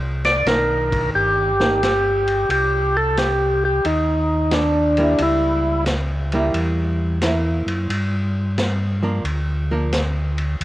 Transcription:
0.00 0.43 C2 medium
0.25 0.48 D5 medium
0.25 snare soft
0.25 ride soft
0.45 1.10 B1 medium
0.45 1.51 D#3 medium
0.45 1.51 A#3 medium
0.45 1.51 D4 medium
0.45 1.10 A#4 medium
0.45 snare medium
0.45 hi-hat pedal medium
0.45 ride medium
0.92 kick medium
0.92 ride medium
1.15 2.46 G1 medium
1.15 2.50 G4 medium
1.60 1.80 D#3 medium
1.60 1.81 A#3 medium
1.60 1.81 D4 medium
1.60 snare medium
1.83 snare medium
1.83 hi-hat pedal soft
1.83 ride medium
2.28 ride soft
2.49 3.80 C2 medium
2.49 2.97 G4 medium
2.49 ride medium
2.97 3.19 A4 medium
3.17 3.64 G4 medium
3.17 snare medium
3.17 hi-hat pedal soft
3.17 ride medium
3.65 3.86 G4 medium
3.85 5.15 D#2 medium
3.85 4.54 D#4 medium
3.85 ride medium
4.51 5.22 D4 medium
4.51 snare medium
4.51 hi-hat pedal medium
4.51 ride medium
4.97 5.83 G3 medium
4.97 5.83 A#3 medium
4.97 5.84 E4 medium
4.97 ride soft
5.18 6.50 C#2 medium
5.18 ride medium
5.23 5.84 E4 medium
5.86 snare medium
5.86 hi-hat pedal medium
5.86 ride medium
6.32 7.18 G3 medium
6.32 7.18 A#3 medium
6.32 7.19 E4 medium
6.32 ride soft
6.54 7.63 E2 medium
6.54 ride medium
7.22 7.90 A#3 medium
7.22 7.90 E4 medium
7.22 snare medium
7.22 hi-hat pedal soft
7.22 ride medium
7.66 7.87 F#2 medium
7.66 ride soft
7.89 9.21 G2 medium
7.89 ride medium
8.58 snare medium
8.58 hi-hat pedal medium
8.58 ride medium
9.03 9.23 F3 medium
9.03 9.23 A#3 medium
9.03 9.23 D4 medium
9.24 10.56 D2 medium
9.24 ride soft
9.71 9.91 F3 medium
9.71 9.91 A#3 medium
9.71 9.91 D4 medium
9.92 snare medium
9.92 hi-hat pedal medium
9.92 ride medium
10.38 ride soft
10.60 10.64 D#2 medium
10.60 ride medium

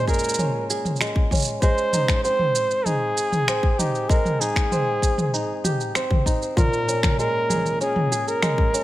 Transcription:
0.00 1.49 A#2 medium
0.00 1.00 G#3 medium
0.00 0.39 C#4 medium
0.08 0.70 G#4 medium
0.08 0.66 A#4 loud
0.08 kick medium
0.08 shaker soft
0.14 shaker soft
0.19 shaker soft
0.24 shaker medium
0.29 shaker medium
0.34 shaker medium
0.38 1.32 C#4 medium
0.38 mid tom medium
0.38 shaker soft
0.70 2.06 G#4 medium
0.70 shaker medium
0.85 mid tom medium
0.85 shaker soft
0.96 shaker soft
1.01 1.63 G#3 medium
1.01 finger snap medium
1.01 shaker soft
1.16 kick loud
1.31 2.30 C#4 medium
1.31 kick medium
1.31 mid tom medium
1.31 shaker soft
1.35 shaker soft
1.37 shaker soft
1.40 shaker medium
1.42 shaker medium
1.45 shaker medium
1.61 4.09 G#3 medium
1.61 2.20 C5 loud
1.61 kick loud
1.61 shaker soft
1.78 shaker soft
1.93 2.85 D#4 medium
1.93 mid tom medium
1.93 shaker medium
2.08 finger snap medium
2.08 kick loud
2.08 shaker soft
2.23 3.48 C4 medium
2.23 2.87 C5 loud
2.23 shaker soft
2.39 mid tom medium
2.55 shaker medium
2.71 shaker soft
2.86 3.79 D#4 medium
2.86 3.80 G#4 loud
2.86 mid tom medium
2.86 shaker soft
3.17 shaker medium
3.32 mid tom medium
3.32 shaker soft
3.48 4.71 C4 medium
3.48 finger snap medium
3.48 shaker soft
3.63 kick loud
3.78 4.41 D#4 medium
3.78 4.11 G4 medium
3.78 mid tom medium
3.78 shaker medium
3.95 shaker soft
4.09 6.63 G#3 medium
4.09 4.42 A#4 loud
4.09 kick loud
4.09 shaker soft
4.25 mid tom medium
4.25 shaker soft
4.40 5.33 D#4 medium
4.40 5.64 G#4 loud
4.40 shaker medium
4.56 finger snap medium
4.56 kick loud
4.56 shaker soft
4.71 5.95 C4 medium
4.71 mid tom medium
4.71 shaker soft
5.02 kick medium
5.02 shaker medium
5.18 mid tom medium
5.18 shaker soft
5.34 6.26 D#4 medium
5.34 shaker soft
5.64 7.06 G4 medium
5.64 mid tom medium
5.64 shaker medium
5.80 shaker soft
5.95 6.94 C4 medium
5.95 finger snap medium
5.95 shaker soft
6.11 kick loud
6.11 mid tom medium
6.26 7.88 D#4 medium
6.26 kick medium
6.26 shaker medium
6.42 shaker soft
6.57 8.84 A#2 medium
6.57 7.15 A#4 loud
6.57 kick loud
6.57 mid tom medium
6.57 shaker soft
6.73 shaker soft
6.88 7.80 C#4 medium
6.88 shaker medium
7.03 finger snap medium
7.03 kick loud
7.03 mid tom medium
7.03 shaker soft
7.19 8.42 G#3 medium
7.19 7.77 A#4 loud
7.19 shaker soft
7.49 8.11 G#4 medium
7.49 mid tom medium
7.49 shaker medium
7.54 mid tom medium
7.58 mid tom medium
7.61 mid tom soft
7.65 mid tom soft
7.65 shaker soft
7.69 mid tom soft
7.73 mid tom soft
7.77 mid tom soft
7.81 8.73 C#4 medium
7.81 8.29 G#4 loud
7.81 shaker soft
7.96 mid tom medium
8.12 8.84 G#4 medium
8.12 shaker medium
8.28 8.84 A#4 loud
8.28 shaker soft
8.42 8.84 G#3 medium
8.42 finger snap medium
8.42 mid tom medium
8.42 shaker soft
8.58 kick loud
8.74 8.84 C#4 medium
8.74 shaker medium

